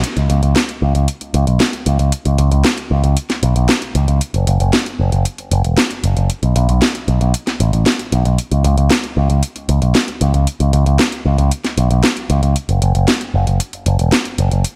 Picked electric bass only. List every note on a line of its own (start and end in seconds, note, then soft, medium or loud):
0.17 0.28 C#2 medium
0.30 0.41 C#2 medium
0.43 0.54 C#2 medium
0.82 0.93 C#2 medium
0.95 1.06 C#2 medium
1.34 1.45 C#2 medium
1.47 1.58 B1 medium
1.86 1.98 C#2 medium
1.99 2.11 C#2 medium
2.26 2.37 C#2 medium
2.39 2.50 C#2 medium
2.52 2.63 C#2 medium
2.91 3.02 C#2 medium
3.04 3.15 C#2 medium
3.43 3.54 B1 medium
3.56 3.67 B1 medium
3.95 4.06 C#2 medium
4.08 4.19 C#2 medium
4.34 4.45 F#1 medium
4.47 4.58 F#1 medium
4.60 4.71 F#1 medium
4.99 5.11 F#1 medium
5.12 5.24 F#1 medium
5.52 5.63 F#1 medium
5.65 5.76 E1 medium
6.04 6.15 F#1 medium
6.17 6.28 F#1 medium
6.43 6.54 B1 medium
6.56 6.67 B1 medium
6.69 6.80 B1 medium
7.08 7.19 B1 medium
7.21 7.32 B1 medium
7.60 7.71 A1 medium
7.73 7.84 A1 medium
8.12 8.24 B1 medium
8.25 8.37 B1 medium
8.52 8.63 C#2 medium
8.64 8.76 C#2 medium
8.78 8.89 C#2 medium
9.17 9.28 C#2 medium
9.30 9.41 C#2 medium
9.69 9.80 C#2 medium
9.82 9.93 B1 medium
10.21 10.32 C#2 medium
10.34 10.45 C#2 medium
10.60 10.71 C#2 medium
10.73 10.84 C#2 medium
10.86 10.97 C#2 medium
11.25 11.37 C#2 medium
11.38 11.50 C#2 medium
11.77 11.89 B1 medium
11.91 12.02 B1 medium
12.30 12.41 C#2 medium
12.43 12.54 C#2 medium
12.69 12.80 F#1 medium
12.82 12.93 F#1 medium
12.95 13.06 F#1 medium
13.34 13.45 F#1 medium
13.47 13.58 F#1 medium
13.86 13.98 F#1 medium
13.99 14.11 E1 medium
14.38 14.50 F#1 medium
14.52 14.63 F#1 medium